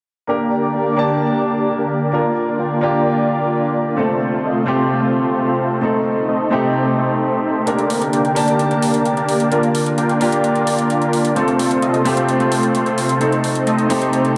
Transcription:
0.27 analog synth pad D3 A#3 G4 D5, grand piano A#3 D4 G4 A#4, supersaw synth A#3 D4 G4 A#4 D5
0.75 supersaw synth A#3 D4 G4 A#4 G5
0.97 grand piano A#3 D4 G4 A5, supersaw synth A#3 D4 G4 A#4 D5
1.09 supersaw synth A#3 D4 G4 A#4 D5
1.32 supersaw synth A#3 D4 G4 A#4 D5
1.78 supersaw synth A#3 D4 G4 A#4 D5
2.12 grand piano A#3 D4 F4 A#4, supersaw synth A#3 D4 F4 A#4 D5, analog synth pad A#3 F4 D5
2.59 supersaw synth A#3 D4 F4 A#4 G5
2.81 grand piano A#3 D4 F4 G4, supersaw synth A#3 D4 F4 A#4 D5
2.94 supersaw synth A#3 D4 F4 A#4 D5
3.97 analog synth pad C3 A3 F4 C5, grand piano A3 C4 F4 A4, supersaw synth A3 C4 F4 A4 C5
4.44 supersaw synth A3 C4 F4 A4 D#5
4.66 grand piano A3 C4 F4 G4, supersaw synth A3 C4 F4 A4 C5
4.78 supersaw synth A3 C4 F4 A4 C5
5.02 supersaw synth A3 C4 F4 A4 C5
5.48 supersaw synth A3 C4 F4 A4 C5
5.81 analog synth pad C3 D#4, grand piano A3 C4 D#4 A4, supersaw synth A3 C4 D#4 A4 C5
6.29 supersaw synth A3 C4 D#4 A4 D#5
6.50 grand piano A3 C4 D#4 G4, supersaw synth A3 C4 D#4 A4 C5
6.63 supersaw synth A3 C4 D#4 A4 C5
6.98 supersaw synth A3 C4 D#4 A4 C5
7.66 analog synth pad D3 A#3 G4 D5, grand piano A#3 D4 G4 A#4, supersaw synth A#3 D4 G4 A#4 D5, closed hi-hat
7.79 closed hi-hat
7.90 open hi-hat
8.02 closed hi-hat
8.13 supersaw synth A#3 D4 G4 A#4 G5, closed hi-hat
8.25 closed hi-hat
8.35 grand piano A#3 D4 G4 A5, supersaw synth A#3 D4 G4 A#4 D5, open hi-hat
8.48 supersaw synth A#3 D4 G4 A#4 D5, closed hi-hat
8.59 closed hi-hat
8.71 supersaw synth A#3 D4 G4 A#4 D5, closed hi-hat
8.82 open hi-hat
8.94 closed hi-hat
9.05 closed hi-hat
9.17 supersaw synth A#3 D4 G4 A#4 D5, closed hi-hat
9.29 open hi-hat
9.40 closed hi-hat
9.50 grand piano A#3 D4 F4 A#4, supersaw synth A#3 D4 F4 A#4 D5, analog synth pad F4, closed hi-hat
9.63 closed hi-hat
9.75 open hi-hat
9.86 closed hi-hat
9.98 supersaw synth A#3 D4 F4 A#4 G5, closed hi-hat
10.09 closed hi-hat
10.20 grand piano A#3 D4 F4 G4, supersaw synth A#3 D4 F4 A#4 D5, open hi-hat
10.32 supersaw synth A#3 D4 F4 A#4 D5, closed hi-hat
10.44 closed hi-hat
10.55 closed hi-hat
10.67 open hi-hat
10.79 closed hi-hat
10.90 closed hi-hat
11.02 closed hi-hat
11.13 open hi-hat
11.25 closed hi-hat
11.35 analog synth pad C3 A3 C5, grand piano A3 C4 F4 A4, supersaw synth A3 C4 F4 A4 C5, closed hi-hat
11.48 closed hi-hat
11.59 open hi-hat
11.71 closed hi-hat
11.82 supersaw synth A3 C4 F4 A4 D#5, closed hi-hat
11.94 closed hi-hat
12.04 grand piano A3 C4 F4 G4, supersaw synth A3 C4 F4 A4 C5, open hi-hat
12.17 supersaw synth A3 C4 F4 A4 C5, closed hi-hat
12.29 closed hi-hat
12.40 supersaw synth A3 C4 F4 A4 C5, closed hi-hat
12.52 open hi-hat
12.63 closed hi-hat
12.75 closed hi-hat
12.86 supersaw synth A3 C4 F4 A4 C5, closed hi-hat
12.98 open hi-hat
13.09 closed hi-hat
13.20 grand piano A3 C4 D#4 A4, supersaw synth A3 C4 D#4 A4 C5, analog synth pad D#4 C5, closed hi-hat
13.32 closed hi-hat
13.44 open hi-hat
13.55 closed hi-hat
13.67 supersaw synth A3 C4 D#4 A4 D#5, closed hi-hat
13.79 closed hi-hat
13.89 grand piano A3 C4 D#4 G4, supersaw synth A3 C4 D#4 A4 C5, open hi-hat
14.02 supersaw synth A3 C4 D#4 A4 C5, closed hi-hat
14.13 closed hi-hat
14.25 closed hi-hat

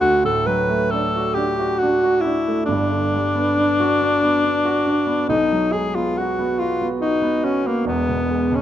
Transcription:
0.01 grand piano D2, alto saxophone F#4
0.25 grand piano A2, alto saxophone A4
0.46 grand piano F#3, alto saxophone B4
0.70 grand piano A3
0.91 grand piano D4, alto saxophone A4
1.16 grand piano F#4
1.34 grand piano D4, alto saxophone G4
1.59 grand piano F#4
1.79 grand piano D4, alto saxophone F#4
2.03 grand piano F#4
2.21 grand piano D4, alto saxophone E4
2.48 grand piano A3
2.66 grand piano G1 G2, alto saxophone D4
2.91 grand piano D3
3.14 grand piano G3
3.35 grand piano B3
3.58 grand piano D4
3.80 grand piano F#4
4.01 grand piano D4
4.23 grand piano B3
4.44 grand piano D4
4.65 grand piano F#4
4.86 grand piano D4
5.07 grand piano B3
5.28 grand piano B1 B2, alto saxophone D#4
5.52 grand piano F#3
5.72 grand piano G#3, alto saxophone G#4
5.95 grand piano B3, alto saxophone F4
6.17 alto saxophone F#4, grand piano F#4
6.39 grand piano B3
6.59 alto saxophone F4, grand piano F#4
6.81 grand piano B3
7.01 alto saxophone D#4, grand piano F#4
7.22 grand piano B3
7.43 alto saxophone C#4, grand piano F#4
7.64 alto saxophone A#3, grand piano B3
7.84 grand piano E1 E2, alto saxophone B3
8.09 grand piano B2
8.30 grand piano G#3
8.52 grand piano B2, alto saxophone C#4

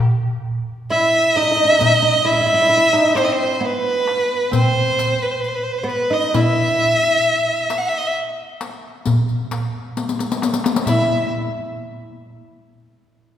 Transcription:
0.00 darbuka dum
0.90 oud E4, violin E5
1.36 oud D#4, violin D#5, darbuka ka
1.43 oud D#4
1.51 oud D#4
1.57 oud D#4
1.65 oud D#4
1.72 oud D#4
1.79 oud D#4, riq, darbuka dum
1.85 oud D#4
2.02 oud D#4
2.25 oud E4, violin E5
2.33 oud E4
2.41 oud E4
2.46 oud E4
2.54 oud E4
2.62 oud E4
2.69 oud E4
2.77 oud E4
2.93 oud D#4
3.15 oud C4, violin C5, riq, darbuka tek
3.24 violin D#5
3.32 violin C5
3.60 oud B3
3.65 violin B4
4.07 darbuka tek
4.51 oud C4, violin C5, riq, darbuka dum
4.75 riq
4.99 riq
5.22 violin B4
5.31 violin C5
5.40 violin B4
5.44 violin C5, riq
5.55 violin B4
5.63 violin C5
5.72 violin B4
5.78 violin C5
5.84 oud B3
5.88 violin B4, riq, darbuka ka
6.10 oud D#4, violin D#5
6.34 oud E4, violin E5, riq, darbuka dum
6.80 riq, darbuka ka
7.70 riq, darbuka tek
7.78 violin F#5
7.88 violin E5
7.98 violin D#5
8.07 violin E5
8.61 riq, darbuka tek
9.06 riq, darbuka dum
9.29 riq, darbuka ka
9.51 riq, darbuka tek
9.97 riq, darbuka tek
10.09 riq
10.19 riq, darbuka ka
10.32 riq
10.42 riq, darbuka tek
10.54 riq
10.64 riq, darbuka ka
10.76 riq
10.86 oud E4, violin E5, riq, darbuka dum

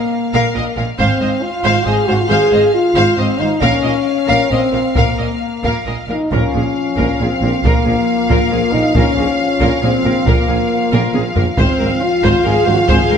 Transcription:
Already playing: french horn section A#3, violin section F5
0.34 double bass section A#1, cello section A#2, viola section A#4, violin section F5
0.55 double bass section A#1, cello section A#2, viola section A#4, violin section D#5
0.76 double bass section A#1, cello section A#2, viola section A#4, violin section F5
0.98 double bass section G#1, cello section G#2, french horn section C4, viola section C5, violin section F5, taiko
1.21 double bass section G#1, cello section G#2, viola section C5, violin section D#5
1.42 french horn section F4
1.63 double bass section G#1, cello section G#2, viola section C5, violin section F5
1.85 double bass section G#1, cello section G#2, french horn section G#4, viola section C5, violin section D#5
2.07 double bass section G#1, cello section G#2, french horn section F#4, viola section C5, violin section F5
2.19 french horn section F4
2.29 double bass section G#1, cello section G#2, french horn section G#4, viola section C5, violin section F5
2.52 double bass section G#1, cello section G#2, viola section C5, violin section D#5
2.73 french horn section F4
2.95 double bass section G#1, cello section G#2, viola section C5, violin section F5
3.17 double bass section G#1, cello section G#2, french horn section C4, viola section C5, violin section D#5
3.38 double bass section G#1, cello section G#2, french horn section D#4, viola section C5, violin section F5
3.61 double bass section A#1, cello section A#2, french horn section C#4, viola section A#4, violin section F5, taiko
3.83 double bass section A#1, cello section A#2, viola section A#4, violin section D#5
4.27 double bass section A#1, cello section A#2, viola section A#4, violin section F5
4.49 double bass section A#1, cello section A#2, french horn section C4, viola section A#4, violin section D#5
4.72 double bass section A#1, cello section A#2, viola section A#4, violin section F5
4.94 double bass section A#1, cello section A#2, french horn section A#3, viola section A#4, violin section F5, taiko
5.18 double bass section A#1, cello section A#2, viola section A#4, violin section D#5
5.63 double bass section A#1, cello section A#2, viola section A#4, violin section F5, taiko
5.85 double bass section A#1, cello section A#2, viola section A#4, violin section D#5
6.08 double bass section A#1, cello section A#2, french horn section D#4, viola section A#4, violin section F5
6.31 double bass section A#1, tuba A#1, cello section A#2, trombone section F3 F4, french horn section C#4, viola section A#4, violin section F5, taiko
6.53 double bass section A#1, tuba A#1, cello section A#2, viola section G#4
6.97 double bass section A#1, tuba A#1, cello section A#2, viola section A#4, taiko
7.20 tuba A#1, double bass section A#1, cello section A#2, french horn section C4, viola section G#4
7.41 double bass section A#1, tuba A#1, cello section A#2, viola section A#4
7.64 double bass section A#1, tuba A#1, cello section A#2, french horn section A#3, viola section A#4, taiko
7.85 tuba A#1, double bass section A#1, cello section A#2, viola section G#4
8.29 tuba A#1, double bass section A#1, cello section A#2, viola section A#4, taiko
8.51 tuba A#1, double bass section A#1, cello section A#2, viola section G#4
8.72 tuba A#1, double bass section A#1, cello section A#2, french horn section D#4, viola section A#4
8.95 double bass section A#1, tuba A#1, cello section A#2, french horn section C#4, viola section A#4, taiko
9.17 double bass section A#1, tuba A#1, cello section A#2, viola section G#4
9.60 double bass section A#1, tuba A#1, cello section A#2, viola section A#4, taiko
9.82 double bass section A#1, tuba A#1, cello section A#2, french horn section C4, viola section G#4
10.04 double bass section A#1, tuba A#1, cello section A#2, viola section A#4
10.25 double bass section A#1, tuba A#1, cello section A#2, french horn section A#3, viola section A#4, taiko
10.47 double bass section A#1, tuba A#1, cello section A#2, viola section G#4
10.92 double bass section A#1, tuba A#1, cello section A#2, viola section A#4, taiko high
11.13 double bass section A#1, tuba A#1, cello section A#2, viola section G#4, taiko high
11.36 double bass section A#1, tuba A#1, cello section A#2, viola section A#4, taiko low
11.57 double bass section G#1, tuba G#1, cello section G#2, trombone section F3 F4, french horn section C4, viola section C5, violin section F5, taiko
11.80 double bass section G#1, tuba G#1, cello section G#2, viola section A#4
12.02 french horn section F4
12.23 double bass section G#1, tuba G#1, cello section G#2, viola section C5, taiko
12.45 double bass section G#1, tuba G#1, cello section G#2, french horn section G#4, viola section A#4
12.66 double bass section G#1, tuba G#1, cello section G#2, french horn section F#4, viola section C5
12.79 french horn section F4
12.88 double bass section G#1, tuba G#1, cello section G#2, french horn section G#4, viola section C5, taiko
13.10 double bass section G#1, tuba G#1, cello section G#2, viola section A#4

